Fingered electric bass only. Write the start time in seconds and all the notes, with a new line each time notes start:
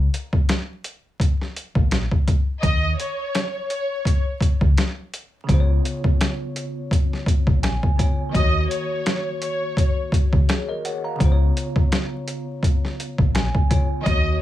1.76 A#1
2.63 D#2
4.61 C#2
5.49 C#2
7.47 A#1
8.35 D#2
10.33 C#2
11.21 C#2
13.19 A#1
14.06 D#2